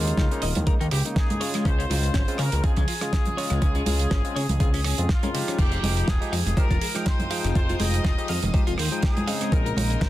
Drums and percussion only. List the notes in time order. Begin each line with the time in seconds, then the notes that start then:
0.07 closed hi-hat
0.17 kick, snare, closed hi-hat, muted conga
0.31 closed hi-hat
0.42 open hi-hat
0.55 closed hi-hat, muted conga, high conga, low conga
0.67 kick, closed hi-hat
0.81 closed hi-hat
0.91 cross-stick, open hi-hat
1.05 closed hi-hat
1.16 kick, snare, closed hi-hat
1.30 closed hi-hat, high conga
1.41 open hi-hat
1.54 cross-stick, closed hi-hat
1.65 kick, closed hi-hat
1.80 closed hi-hat
1.90 open hi-hat, high conga
2.04 closed hi-hat
2.14 kick, snare, closed hi-hat, muted conga
2.28 closed hi-hat
2.38 cross-stick, open hi-hat
2.52 closed hi-hat, muted conga, high conga
2.64 kick, closed hi-hat
2.77 kick, closed hi-hat, low conga
2.88 open hi-hat
3.01 cross-stick, closed hi-hat
3.13 kick, snare, closed hi-hat
3.25 closed hi-hat, muted conga, high conga, low conga
3.38 open hi-hat
3.50 cross-stick, closed hi-hat
3.62 kick, closed hi-hat
3.75 closed hi-hat, muted conga
3.86 open hi-hat, high conga
3.99 closed hi-hat
4.11 kick, snare, closed hi-hat, muted conga
4.25 closed hi-hat
4.36 open hi-hat
4.49 closed hi-hat, muted conga, high conga, low conga
4.60 kick, closed hi-hat
4.74 open hi-hat
4.84 cross-stick, open hi-hat
4.98 closed hi-hat
5.09 kick, snare, closed hi-hat
5.23 closed hi-hat, high conga
5.35 open hi-hat
5.48 cross-stick, closed hi-hat
5.59 kick, closed hi-hat, crash
5.72 closed hi-hat
5.83 open hi-hat, high conga
5.97 closed hi-hat
6.08 kick, snare, closed hi-hat, muted conga
6.22 closed hi-hat
6.33 cross-stick, open hi-hat
6.46 closed hi-hat, muted conga, high conga
6.57 kick, closed hi-hat
6.71 kick, closed hi-hat, low conga
6.81 open hi-hat
6.95 cross-stick, closed hi-hat
7.06 kick, snare, closed hi-hat
7.19 closed hi-hat, muted conga, high conga, low conga
7.31 open hi-hat
7.44 cross-stick, closed hi-hat
7.55 kick, closed hi-hat
7.69 closed hi-hat, muted conga
7.80 open hi-hat, high conga
7.94 closed hi-hat
8.04 kick, snare, closed hi-hat, muted conga
8.18 closed hi-hat
8.28 open hi-hat
8.42 closed hi-hat, muted conga, high conga, low conga
8.54 kick, closed hi-hat
8.67 closed hi-hat
8.78 cross-stick, open hi-hat
8.92 closed hi-hat
9.03 kick, snare, closed hi-hat
9.17 closed hi-hat, high conga
9.28 open hi-hat
9.41 cross-stick, closed hi-hat
9.52 kick, closed hi-hat
9.66 closed hi-hat
9.77 open hi-hat, high conga
9.90 closed hi-hat
10.01 kick, snare, closed hi-hat, muted conga